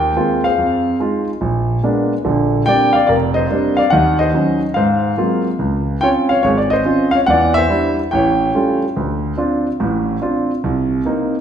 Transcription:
0.00 0.10 D#2 medium
0.00 0.40 A#4 medium
0.00 0.40 C5 medium
0.00 0.39 G5 medium
0.16 0.45 G#3 medium
0.16 0.45 A#3 soft
0.16 0.45 C4 soft
0.16 0.45 F4 medium
0.44 1.24 G#4 soft
0.44 1.24 C5 medium
0.44 0.96 F5 medium
0.58 0.94 F2 medium
1.00 1.28 G#3 medium
1.00 1.29 D#4 soft
1.00 1.29 F4 medium
1.41 1.77 A#1 medium
1.83 2.12 G#3 soft
1.83 2.12 A#3 soft
1.83 2.12 B3 soft
1.83 2.12 D4 medium
2.25 2.61 A#1 medium
2.25 2.61 D3 medium
2.66 2.95 G3 medium
2.66 2.95 A#3 soft
2.66 2.96 C4 soft
2.66 2.96 D4 medium
2.66 2.93 D5 medium
2.66 2.94 G5 loud
2.93 3.05 D5 medium
2.93 3.08 F5 medium
3.07 3.45 F1 medium
3.07 3.15 A#4 medium
3.07 3.13 D5 medium
3.34 3.75 C5 medium
3.34 3.74 D#5 medium
3.50 3.79 G3 soft
3.50 3.79 A#3 soft
3.50 3.79 C4 soft
3.50 3.80 D4 medium
3.77 3.91 D5 medium
3.77 3.90 F5 medium
3.90 4.29 D#2 medium
3.90 4.28 D#3 medium
3.90 4.17 D#5 medium
3.90 4.17 F#5 medium
4.19 4.59 C5 medium
4.19 4.58 D#5 medium
4.34 4.63 F#3 medium
4.34 4.63 C#4 soft
4.34 4.63 D#4 medium
4.74 5.12 G#2 medium
4.74 5.42 C5 medium
4.74 5.40 F5 medium
5.17 5.46 F#3 soft
5.17 5.46 G#3 soft
5.17 5.47 A#3 soft
5.17 5.47 C4 soft
5.17 5.47 F4 medium
5.59 5.96 C#2 medium
6.01 6.31 C4 soft
6.01 6.31 C#4 soft
6.01 6.31 F4 medium
6.01 6.09 C#5 medium
6.01 6.07 G5 medium
6.29 6.41 C#5 medium
6.29 6.44 F5 medium
6.43 6.80 G#1 medium
6.43 6.57 G#4 medium
6.43 6.57 C#5 medium
6.57 6.71 D5 medium
6.70 7.11 C5 medium
6.70 7.10 D#5 medium
6.85 7.14 C4 soft
6.85 7.14 C#4 soft
6.85 7.15 F4 medium
7.11 7.20 C#5 medium
7.11 7.16 F5 medium
7.26 7.64 E2 medium
7.26 7.54 D5 medium
7.26 7.52 F#5 loud
7.54 7.96 C5 medium
7.54 7.93 E5 loud
7.70 7.98 G3 medium
7.70 7.98 D4 soft
7.70 7.99 E4 medium
8.11 8.48 A1 medium
8.11 8.78 C#5 medium
8.11 8.77 G5 medium
8.55 8.83 G3 soft
8.55 8.83 A3 soft
8.55 8.83 C#4 soft
8.55 8.83 F4 soft
8.96 9.32 D2 medium
9.37 9.66 C4 soft
9.37 9.66 D4 soft
9.37 9.67 F4 medium
9.80 10.16 A1 medium
9.80 10.16 A2 medium
10.22 10.50 C4 soft
10.22 10.50 D4 soft
10.22 10.51 F4 medium
10.64 11.00 C2 medium
11.06 11.34 A#3 soft
11.06 11.34 C4 soft
11.06 11.35 D#4 medium

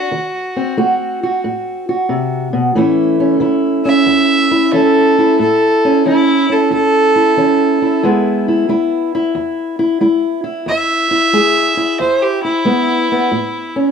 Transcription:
0.00 0.73 F#4 medium
0.11 0.72 D#3 medium
0.56 2.73 C4 soft
0.77 1.38 A3 medium
0.77 1.21 F#4 medium
1.23 1.88 F#4 medium
1.44 2.05 A2 medium
1.89 2.73 F#4 medium
2.09 2.53 C3 medium
2.53 2.75 B2 medium
2.75 3.37 A2 medium
2.75 3.40 E3 medium
2.75 5.37 A3 medium
2.75 3.20 C#4 soft
2.75 3.41 E4 medium
3.20 3.85 C#4 medium
3.40 4.02 E3 medium
3.40 4.51 E4 medium
3.85 4.72 C#4 medium
3.85 4.71 E5 medium
4.06 4.68 E2 medium
4.51 5.18 E4 medium
4.73 5.35 E3 medium
4.73 5.36 C#4 medium
4.73 5.37 A4 medium
5.19 7.15 E4 medium
5.39 6.01 A2 medium
5.39 6.04 A4 medium
5.85 6.05 C#4 soft
6.06 6.67 E3 medium
6.06 6.48 C#4 medium
6.06 6.54 E4 loud
6.50 7.37 C#4 medium
6.50 6.72 A4 medium
6.71 7.32 E2 medium
6.71 8.00 A4 loud
7.16 7.82 E4 medium
7.37 7.99 E3 medium
7.37 8.01 C#4 medium
7.82 8.05 E4 medium
8.03 8.65 E2 medium
8.03 8.68 G#3 medium
8.03 10.65 B3 medium
8.03 8.48 E4 medium
8.48 8.69 E4 medium
8.69 9.30 G#3 medium
8.69 9.14 E4 medium
9.15 9.79 E4 medium
9.35 9.96 E2 medium
9.79 10.01 E4 medium
10.01 10.62 G#3 medium
10.01 10.43 E4 medium
10.44 11.10 E4 medium
10.66 11.28 E2 medium
10.66 11.96 E5 loud
11.11 11.76 E4 medium
11.33 11.95 G#3 medium
11.33 13.28 G#4 medium
11.77 12.43 E4 medium
12.00 12.61 E2 medium
12.00 12.24 C5 medium
12.22 12.43 G4 medium
12.43 13.71 E4 medium
12.43 13.29 E4 medium
12.65 13.27 G#3 medium
12.65 13.10 B3 medium
13.12 13.29 B3 soft
13.32 13.91 A2 medium
13.76 13.91 C#4 soft

